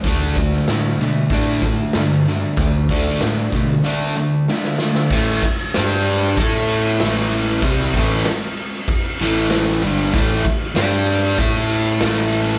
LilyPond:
<<
  \new Staff \with { instrumentName = "Distorted electric guitar" } { \time 4/4 \key d \major \tempo 4 = 95 <d a d'>8 <d a>8 <d a>8 <d a>8 <d a d'>8 <d a>8 <d a>8 <d a>8 | <d a>8 <d a d'>8 <d a>8 <d a>8 <d a d'>8 <d a>8 <d a>8 <d a>8 | <a, e a>8 r8 <g d' g'>4 <a e' a'>4 <a, e a>4 | <c g c'>8 <a, e a>8 r4. <a, e a>4 <g, d g>8 |
<a, e a>8 r8 <g d' g'>4 <a e' a'>4 <a, e a>4 | }
  \new Staff \with { instrumentName = "Picked electric bass" } { \clef bass \time 4/4 \key d \major d,4 a,8 b,8 a,4 g,4 | d,4 a,8 b,8 r2 | a,,8 r8 g,4 a,4 a,,4 | c,8 a,,8 r4. a,,4 g,,8 |
a,,8 r8 g,4 a,4 a,,4 | }
  \new DrumStaff \with { instrumentName = "Drums" } \drummode { \time 4/4 <hho bd>8 <hho bd>16 sn16 <hho sn>8 hho8 <hho bd>8 <hho bd>8 <hho sn>8 hho8 | <hho bd>8 <hho bd>8 <hho sn>8 <hho bd>8 r4 sn16 sn16 sn16 sn16 | <cymc bd>8 <bd cymr>8 <cymr sn>8 cymr8 <bd cymr>8 cymr8 <cymr sn>8 cymr8 | <bd cymr>8 <bd cymr>8 <cymr sn>8 cymr8 <bd cymr>8 cymr8 <cymr sn>8 cymr8 |
<bd cymr>8 <bd cymr>8 <cymr sn>8 cymr8 <bd cymr>8 cymr8 <cymr sn>8 cymr8 | }
>>